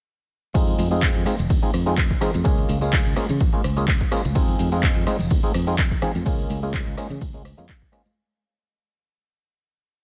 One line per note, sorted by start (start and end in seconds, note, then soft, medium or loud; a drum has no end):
0.54 0.73 F2 loud
0.54 0.88 G#3 loud
0.54 0.88 C4 medium
0.54 0.88 D#4 medium
0.54 0.88 F4 medium
0.54 0.88 G#4 loud
0.54 kick loud
0.54 ride medium
0.54 tambourine soft
0.54 shaker soft
0.68 closed hi-hat medium
0.68 shaker soft
0.79 1.10 F2 medium
0.79 open hi-hat loud
0.79 tambourine loud
0.79 high conga loud
0.79 shaker medium
0.91 1.23 G#3 medium
0.91 1.23 C4 medium
0.91 1.23 D#4 medium
0.91 1.24 F4 medium
0.91 1.24 G#4 medium
0.91 closed hi-hat medium
0.91 tambourine soft
0.91 shaker soft
1.02 kick loud
1.02 clap loud
1.02 ride medium
1.02 shaker soft
1.15 1.24 F2 medium
1.15 closed hi-hat medium
1.15 shaker soft
1.25 1.35 G#3 medium
1.25 1.35 C4 medium
1.25 1.35 D#4 medium
1.25 1.35 F4 medium
1.25 1.35 G#4 medium
1.25 muted fingered electric bass stroke soft
1.25 cross-stick medium
1.25 open hi-hat medium
1.25 tambourine loud
1.25 high conga medium
1.25 shaker medium
1.39 1.47 F1 medium
1.39 closed hi-hat medium
1.39 tambourine soft
1.39 low conga medium
1.39 shaker soft
1.50 1.60 D#2 medium
1.50 kick loud
1.50 ride medium
1.50 tambourine soft
1.50 shaker soft
1.62 1.71 G#3 medium
1.62 1.71 C4 medium
1.62 1.71 D#4 medium
1.62 1.71 F4 medium
1.62 1.71 G#4 medium
1.62 high conga medium
1.74 2.05 F2 medium
1.74 cross-stick medium
1.74 open hi-hat loud
1.74 tambourine medium
1.74 shaker medium
1.86 1.94 G#3 medium
1.86 1.94 C4 medium
1.86 1.95 D#4 medium
1.86 1.95 F4 medium
1.86 1.95 G#4 medium
1.86 closed hi-hat medium
1.86 tambourine medium
1.86 shaker soft
1.98 kick loud
1.98 clap loud
1.98 ride medium
1.98 tambourine soft
1.98 high conga medium
1.98 shaker soft
2.10 kick medium
2.10 closed hi-hat soft
2.10 low conga medium
2.10 shaker soft
2.21 2.30 G#3 medium
2.21 2.30 C4 medium
2.21 2.31 D#4 medium
2.21 2.31 F4 medium
2.21 2.31 G#4 loud
2.21 muted fingered electric bass stroke soft
2.21 cross-stick medium
2.21 open hi-hat medium
2.21 tambourine medium
2.21 low conga medium
2.21 shaker medium
2.34 2.43 F2 loud
2.34 closed hi-hat medium
2.34 tambourine medium
2.34 high conga medium
2.34 shaker soft
2.44 2.64 C#2 loud
2.44 2.78 G#3 medium
2.44 2.78 A#3 medium
2.44 2.78 C#4 medium
2.44 2.79 F4 medium
2.44 2.79 G#4 loud
2.44 kick loud
2.44 ride medium
2.44 tambourine soft
2.44 shaker soft
2.58 closed hi-hat medium
2.58 shaker soft
2.69 3.01 C#2 loud
2.69 open hi-hat loud
2.69 tambourine medium
2.69 high conga loud
2.69 shaker medium
2.81 3.14 G#3 medium
2.81 3.14 A#3 medium
2.81 3.14 C#4 medium
2.81 3.14 F4 medium
2.81 3.14 G#4 medium
2.81 closed hi-hat medium
2.81 tambourine medium
2.81 shaker soft
2.93 kick loud
2.93 clap loud
2.93 ride medium
2.93 tambourine soft
2.93 shaker soft
3.06 3.14 C#2 medium
3.06 closed hi-hat soft
3.06 shaker soft
3.16 3.26 G#3 medium
3.16 3.26 A#3 medium
3.16 3.26 C#4 medium
3.16 3.26 F4 medium
3.16 3.26 G#4 medium
3.16 muted fingered electric bass stroke soft
3.16 cross-stick medium
3.16 open hi-hat loud
3.16 tambourine medium
3.16 high conga medium
3.16 shaker medium
3.29 3.38 C#3 medium
3.29 closed hi-hat medium
3.29 tambourine medium
3.29 low conga medium
3.29 shaker soft
3.40 3.50 A#1 medium
3.40 kick loud
3.40 ride medium
3.40 tambourine soft
3.40 shaker soft
3.53 3.61 G#3 medium
3.53 3.61 A#3 medium
3.53 3.61 C#4 medium
3.53 3.61 F4 medium
3.53 3.61 G#4 medium
3.53 muted fingered electric bass stroke soft
3.53 high conga medium
3.64 3.96 C#2 medium
3.64 cross-stick medium
3.64 open hi-hat loud
3.64 tambourine medium
3.64 shaker medium
3.77 3.85 G#3 medium
3.77 3.85 A#3 medium
3.77 3.85 C#4 medium
3.77 3.85 F4 medium
3.77 3.85 G#4 medium
3.77 closed hi-hat medium
3.77 tambourine medium
3.77 shaker soft
3.88 kick loud
3.88 clap loud
3.88 ride medium
3.88 tambourine soft
3.88 high conga medium
3.88 shaker soft
4.01 kick medium
4.01 closed hi-hat soft
4.01 shaker soft
4.11 4.21 G#3 medium
4.11 4.21 A#3 medium
4.11 4.21 C#4 medium
4.11 4.21 F4 medium
4.11 4.21 G#4 loud
4.11 muted fingered electric bass stroke soft
4.11 cross-stick medium
4.11 open hi-hat medium
4.11 tambourine loud
4.11 shaker medium
4.24 4.33 C#2 loud
4.24 closed hi-hat medium
4.24 tambourine medium
4.24 high conga medium
4.24 shaker soft
4.35 4.54 F2 loud
4.35 4.69 G#3 loud
4.35 4.69 C4 medium
4.35 4.69 D#4 medium
4.35 4.69 F4 medium
4.35 4.69 G#4 loud
4.35 kick loud
4.35 ride medium
4.35 tambourine soft
4.35 shaker soft
4.48 closed hi-hat medium
4.48 shaker soft
4.59 4.91 F2 loud
4.59 open hi-hat loud
4.59 tambourine medium
4.59 high conga loud
4.59 shaker medium
4.72 5.04 G#3 medium
4.72 5.04 C4 medium
4.72 5.04 D#4 medium
4.72 5.05 F4 medium
4.72 5.05 G#4 medium
4.72 closed hi-hat medium
4.72 tambourine medium
4.72 shaker soft
4.83 kick loud
4.83 clap loud
4.83 ride medium
4.83 shaker soft
4.96 5.04 F2 loud
4.96 closed hi-hat soft
4.96 shaker soft
5.06 5.16 G#3 medium
5.06 5.16 C4 medium
5.06 5.16 D#4 medium
5.06 5.16 F4 medium
5.06 5.16 G#4 medium
5.06 cross-stick medium
5.06 open hi-hat loud
5.06 tambourine loud
5.06 high conga medium
5.06 shaker medium
5.19 5.28 F1 medium
5.19 closed hi-hat medium
5.19 tambourine medium
5.19 low conga medium
5.19 shaker soft
5.30 5.41 D#2 medium
5.30 kick loud
5.30 ride medium
5.30 shaker soft
5.43 5.51 G#3 medium
5.43 5.52 C4 medium
5.43 5.52 D#4 medium
5.43 5.52 F4 medium
5.43 5.52 G#4 medium
5.43 muted fingered electric bass stroke soft
5.43 high conga loud
5.54 5.86 F2 medium
5.54 cross-stick medium
5.54 open hi-hat loud
5.54 tambourine medium
5.54 shaker medium
5.67 5.75 G#3 medium
5.67 5.75 C4 medium
5.67 5.75 D#4 medium
5.67 5.76 F4 medium
5.67 5.76 G#4 medium
5.67 closed hi-hat medium
5.67 tambourine soft
5.67 shaker soft
5.78 kick loud
5.78 clap loud
5.78 ride medium
5.78 tambourine soft
5.78 high conga medium
5.78 shaker soft
5.91 kick medium
5.91 closed hi-hat soft
5.91 low conga medium
5.91 shaker soft
6.02 6.11 G#3 medium
6.02 6.11 C4 medium
6.02 6.12 D#4 medium
6.02 6.12 F4 medium
6.02 6.12 G#4 loud
6.02 muted fingered electric bass stroke soft
6.02 cross-stick medium
6.02 open hi-hat loud
6.02 tambourine medium
6.02 low conga medium
6.02 shaker medium
6.15 6.24 F2 medium
6.15 closed hi-hat medium
6.15 tambourine medium
6.15 high conga loud
6.15 shaker soft
6.26 6.44 C#2 loud
6.26 6.59 G#3 loud
6.26 6.60 A#3 medium
6.26 6.60 C#4 medium
6.26 6.60 F4 medium
6.26 6.60 G#4 loud
6.26 kick loud
6.26 ride medium
6.26 shaker soft
6.39 closed hi-hat soft
6.39 shaker soft
6.50 6.81 C#2 loud
6.50 open hi-hat loud
6.50 tambourine loud
6.50 high conga medium
6.50 shaker medium
6.62 6.95 G#3 medium
6.62 6.95 A#3 medium
6.62 6.95 C#4 medium
6.62 6.95 F4 medium
6.62 6.95 G#4 medium
6.62 closed hi-hat medium
6.62 tambourine soft
6.62 shaker soft
6.74 kick loud
6.74 clap loud
6.74 ride medium
6.74 shaker soft
6.87 6.95 C#2 loud
6.87 closed hi-hat medium
6.87 shaker soft
6.97 7.07 G#3 medium
6.97 7.07 A#3 medium
6.97 7.07 C#4 medium
6.97 7.07 F4 medium
6.97 7.07 G#4 medium
6.97 cross-stick medium
6.97 open hi-hat loud
6.97 tambourine loud
6.97 high conga medium
6.97 shaker medium
7.10 7.19 C#3 medium
7.10 closed hi-hat medium
7.10 tambourine medium
7.10 low conga medium
7.10 shaker soft
7.21 7.53 C#2 loud
7.21 kick loud
7.21 ride medium
7.21 tambourine soft
7.21 shaker soft
7.33 7.42 G#3 medium
7.33 7.42 A#3 medium
7.33 7.42 C#4 medium
7.33 7.42 F4 medium
7.33 7.42 G#4 medium
7.33 closed hi-hat soft
7.33 high conga medium
7.45 cross-stick medium
7.45 open hi-hat loud
7.45 tambourine medium
7.45 shaker medium
7.57 7.66 F2 loud
7.57 7.66 G#3 medium
7.57 7.66 A#3 medium
7.57 7.66 C#4 medium
7.57 7.66 F4 medium
7.57 7.66 G#4 medium
7.57 closed hi-hat medium
7.57 tambourine soft
7.57 shaker soft
7.69 kick loud
7.69 clap loud
7.69 ride medium
7.69 tambourine soft
7.69 high conga medium
7.69 shaker soft
7.82 kick medium
7.82 closed hi-hat soft
7.82 shaker soft
7.92 8.02 G#3 medium
7.92 8.02 A#3 medium
7.92 8.02 C#4 medium
7.92 8.02 F4 medium
7.92 8.02 G#4 loud
7.92 cross-stick medium
7.92 open hi-hat loud
7.92 tambourine medium
7.92 shaker medium
8.06 closed hi-hat medium
8.06 tambourine medium
8.06 high conga medium
8.06 shaker soft